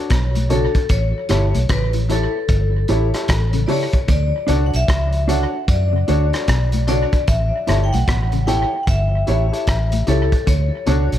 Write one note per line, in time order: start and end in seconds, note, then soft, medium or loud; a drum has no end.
0.00 0.11 D4 medium
0.00 0.11 F#4 medium
0.00 0.12 A4 medium
0.00 0.12 C#5 medium
0.00 0.48 C#5 medium
0.10 0.67 B1 medium
0.10 0.27 B2 medium
0.10 kick loud
0.10 cross-stick medium
0.10 closed hi-hat medium
0.35 0.46 A2 medium
0.35 closed hi-hat medium
0.49 0.67 C#3 medium
0.49 0.75 D4 medium
0.49 0.76 F#4 medium
0.49 0.68 F#4 medium
0.49 0.76 A4 medium
0.49 0.68 A4 medium
0.49 0.92 A4 medium
0.49 0.76 C#5 medium
0.49 0.69 C#5 medium
0.49 closed hi-hat medium
0.75 kick medium
0.75 closed hi-hat soft
0.89 1.12 A1 loud
0.89 1.73 C#5 medium
0.89 kick loud
0.89 closed hi-hat medium
1.29 1.52 G1 medium
1.29 1.47 B2 medium
1.29 1.47 E4 medium
1.29 1.56 E4 medium
1.29 1.47 G4 medium
1.29 1.56 G4 medium
1.29 1.56 A4 medium
1.29 1.48 C#5 medium
1.29 1.56 C#5 medium
1.29 cross-stick medium
1.29 closed hi-hat medium
1.55 1.68 B1 medium
1.55 1.65 A2 medium
1.55 closed hi-hat medium
1.69 2.26 A1 medium
1.69 1.86 C#3 medium
1.69 1.89 B4 medium
1.69 kick loud
1.69 cross-stick loud
1.69 closed hi-hat medium
1.93 2.04 E3 medium
1.93 closed hi-hat soft
2.09 2.26 E3 medium
2.09 2.35 E4 medium
2.09 2.27 E4 medium
2.09 2.35 G4 medium
2.09 2.27 G4 medium
2.09 2.36 A4 medium
2.09 3.70 A4 medium
2.09 2.36 C#5 medium
2.09 2.28 C#5 medium
2.09 closed hi-hat medium
2.35 muted clean electric guitar stroke soft
2.49 2.84 G1 medium
2.49 kick loud
2.49 closed hi-hat medium
2.88 3.11 A1 medium
2.88 3.13 E4 medium
2.88 3.07 E4 medium
2.88 3.13 G4 medium
2.88 3.07 G4 medium
2.88 3.14 A4 medium
2.88 3.14 C#5 medium
2.88 3.07 C#5 medium
2.88 closed hi-hat medium
3.14 3.30 E4 medium
3.14 3.30 G4 medium
3.14 3.31 A4 medium
3.14 3.31 C#5 medium
3.14 cross-stick medium
3.14 closed hi-hat medium
3.28 3.64 A1 medium
3.28 kick loud
3.28 cross-stick loud
3.28 closed hi-hat medium
3.53 3.64 C#3 medium
3.53 closed hi-hat medium
3.67 3.85 C#3 medium
3.67 3.86 E4 medium
3.67 3.94 E4 medium
3.67 3.86 G4 medium
3.67 3.94 G4 medium
3.67 3.95 A4 medium
3.67 3.87 C#5 medium
3.67 3.95 C#5 medium
3.67 3.70 D5 medium
3.67 open hi-hat medium
3.72 4.07 C#5 medium
3.93 kick medium
3.93 closed hi-hat soft
4.08 4.31 D2 medium
4.08 4.25 D3 medium
4.08 4.67 D5 medium
4.08 kick loud
4.08 closed hi-hat medium
4.47 4.70 C#2 medium
4.47 4.65 B2 medium
4.47 4.65 D4 medium
4.47 4.74 D4 medium
4.47 4.66 F#4 medium
4.47 4.74 F#4 medium
4.47 4.74 A4 medium
4.47 4.66 C#5 medium
4.47 4.75 C#5 medium
4.47 closed hi-hat medium
4.66 4.74 F#5 medium
4.74 4.87 B1 medium
4.74 5.31 E5 medium
4.74 closed hi-hat medium
4.88 5.44 C#2 medium
4.88 5.05 C#3 medium
4.88 kick loud
4.88 cross-stick loud
4.88 closed hi-hat medium
5.13 closed hi-hat soft
5.28 5.45 D3 medium
5.28 5.54 D4 medium
5.28 5.45 D4 medium
5.28 5.54 F#4 medium
5.28 5.46 F#4 medium
5.28 5.54 A4 medium
5.28 5.54 C#5 medium
5.28 5.46 C#5 medium
5.28 5.70 F#5 loud
5.28 closed hi-hat medium
5.53 muted clean electric guitar stroke soft
5.68 6.03 F#2 medium
5.68 6.84 D5 loud
5.68 kick loud
5.68 closed hi-hat medium
5.93 6.03 C#3 medium
6.08 6.30 D2 medium
6.08 6.25 A2 medium
6.08 6.31 D4 medium
6.08 6.25 D4 medium
6.08 6.32 F#4 medium
6.08 6.26 F#4 medium
6.08 6.32 A4 medium
6.08 6.26 C#5 medium
6.08 6.33 C#5 medium
6.08 closed hi-hat medium
6.33 6.49 D4 medium
6.33 6.49 F#4 medium
6.33 6.49 A4 medium
6.33 6.49 C#5 medium
6.33 cross-stick medium
6.33 closed hi-hat medium
6.48 7.04 B1 medium
6.48 6.65 B2 medium
6.48 kick medium
6.48 cross-stick loud
6.48 closed hi-hat medium
6.72 6.83 A2 medium
6.72 closed hi-hat medium
6.87 7.05 C#3 medium
6.87 7.13 D4 medium
6.87 7.06 D4 medium
6.87 7.13 F#4 medium
6.87 7.06 F#4 medium
6.87 7.14 A4 medium
6.87 7.14 C#5 loud
6.87 7.06 C#5 medium
6.87 7.25 D5 medium
6.87 closed hi-hat medium
7.13 kick medium
7.13 closed hi-hat soft
7.28 7.49 A1 medium
7.28 7.86 E5 loud
7.28 kick loud
7.28 closed hi-hat medium
7.67 7.90 G1 medium
7.67 7.85 B2 medium
7.67 7.93 E4 medium
7.67 7.85 E4 medium
7.67 7.93 G4 medium
7.67 7.85 G4 medium
7.67 7.93 A4 medium
7.67 7.94 C#5 loud
7.67 7.86 C#5 medium
7.67 cross-stick medium
7.67 closed hi-hat medium
7.84 7.92 G5 medium
7.93 8.06 B1 medium
7.93 8.03 A2 medium
7.93 8.49 F#5 medium
7.93 closed hi-hat medium
8.08 8.25 B2 medium
8.08 kick loud
8.08 cross-stick loud
8.08 closed hi-hat medium
8.32 8.43 C#3 medium
8.32 closed hi-hat soft
8.47 8.65 B2 medium
8.47 8.73 E4 medium
8.47 8.65 E4 medium
8.47 8.73 G4 medium
8.47 8.65 G4 medium
8.47 8.73 A4 medium
8.47 8.73 C#5 loud
8.47 8.66 C#5 medium
8.47 8.83 G5 loud
8.47 closed hi-hat medium
8.73 muted clean electric guitar stroke soft
8.83 8.88 F#5 medium
8.83 closed hi-hat medium
8.87 9.22 G1 medium
8.87 10.11 E5 loud
8.87 kick loud
9.27 9.49 A1 medium
9.27 9.50 E4 medium
9.27 9.45 E4 medium
9.27 9.51 G4 medium
9.27 9.45 G4 medium
9.27 9.51 A4 medium
9.27 9.52 C#5 loud
9.27 9.46 C#5 loud
9.27 closed hi-hat medium
9.52 9.68 E4 medium
9.52 9.68 G4 medium
9.52 9.68 A4 medium
9.52 9.68 C#5 medium
9.52 closed hi-hat medium
9.67 10.02 A1 medium
9.67 kick loud
9.67 cross-stick loud
9.67 closed hi-hat medium
9.92 10.03 A2 medium
9.92 closed hi-hat medium
10.07 10.29 C#2 medium
10.07 10.24 C#3 medium
10.07 10.33 E4 medium
10.07 10.25 E4 medium
10.07 10.33 G4 medium
10.07 10.26 G4 medium
10.07 10.33 A4 medium
10.07 10.49 A4 medium
10.07 10.33 C#5 medium
10.07 10.26 C#5 loud
10.07 closed hi-hat medium
10.32 kick medium
10.32 closed hi-hat soft
10.47 10.69 D2 loud
10.47 10.64 D3 medium
10.47 11.19 C#5 medium
10.47 kick loud
10.47 closed hi-hat medium
10.86 11.09 C#2 medium
10.86 11.04 B2 medium
10.86 11.12 D4 medium
10.86 11.05 D4 medium
10.86 11.12 F#4 medium
10.86 11.05 F#4 medium
10.86 11.13 A4 medium
10.86 11.13 C#5 medium
10.86 11.05 C#5 medium
10.86 closed hi-hat medium
11.12 11.19 B1 medium
11.12 closed hi-hat medium